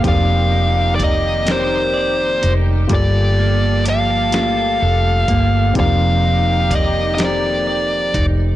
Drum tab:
HH |x-xx-x|x-xx-x|x-xx-x|
SD |---o--|---o--|---o--|
BD |o-o---|o----o|o-o--o|